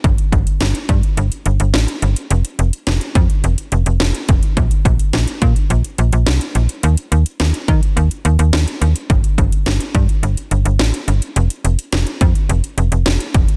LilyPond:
<<
  \new Staff \with { instrumentName = "FM bass" } { \clef bass \time 4/4 \key f \mixolydian \tempo 4 = 106 g,,16 r16 g,,16 r16 g,,16 r16 g,16 r16 g,,16 r16 g,,16 g,,16 a,,16 r16 g,,16 r16 | f,,16 r16 f,,16 r16 f,,16 r16 f,16 r16 f,,16 r16 f,,16 f,,16 f,,16 r16 f,,16 r16 | bes,,16 r16 bes,,16 r16 bes,,16 r16 bes,16 r16 bes,,16 r16 bes,,16 bes,,16 c,16 r16 bes,,16 r16 | ees,16 r16 ees,16 r16 ees,16 r16 ees16 r16 ees,16 r16 ees,16 ees,16 ees,16 r16 ees,16 r16 |
g,,16 r16 g,,16 r16 g,,16 r16 g,16 r16 g,,16 r16 g,,16 g,,16 a,,16 r16 g,,16 r16 | f,,16 r16 f,,16 r16 f,,16 r16 f,16 r16 f,,16 r16 f,,16 f,,16 f,,16 r16 f,,16 r16 | }
  \new DrumStaff \with { instrumentName = "Drums" } \drummode { \time 4/4 <hh bd>16 hh16 <hh bd>16 hh16 <hh sn>16 hh16 <hh bd>16 hh16 hh16 hh16 hh16 hh16 <hh sn>16 hh16 hh16 hh16 | hh16 hh16 hh16 hh16 <hh sn>16 hh16 <hh bd>16 hh16 hh16 hh16 hh16 hh16 <hh sn>16 hh16 <hh bd>16 hh16 | <hh bd>16 hh16 <hh bd>16 hh16 <hh sn>16 hh16 <hh bd>16 hh16 hh16 hh16 hh16 hh16 <hh sn>16 hh16 hh16 hh16 | hh16 hh16 hh16 hh16 <hh sn>16 hh16 <hh bd>16 hh16 hh16 hh16 hh16 hh16 <hh sn>16 hh16 hh16 hh16 |
<hh bd>16 hh16 <hh bd>16 hh16 <hh sn>16 hh16 <hh bd>16 hh16 hh16 hh16 hh16 hh16 <hh sn>16 hh16 hh16 hh16 | hh16 hh16 hh16 hh16 <hh sn>16 hh16 <hh bd>16 hh16 hh16 hh16 hh16 hh16 <hh sn>16 hh16 <hh bd>16 hh16 | }
>>